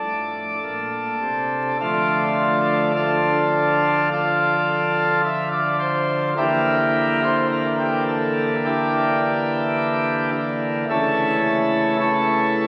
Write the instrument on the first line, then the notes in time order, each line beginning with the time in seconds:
pipe organ
Already playing: D4 A4 D5
0.03 A2
0.63 A#2
1.22 C3
1.80 D3 F3 A3 D4 F4
2.95 D4 F4 A4
4.12 F4 A4 D5
5.24 E5
5.53 D5
5.80 C5
6.37 D3 E3 A#3 E4 G4 A#4
7.24 C5
7.52 A#4
7.79 G4
8.08 A4
8.65 D4 E4 G4
10.89 C#3 E3 A3 C#4 E4 A4
12.00 E4 A4 C#5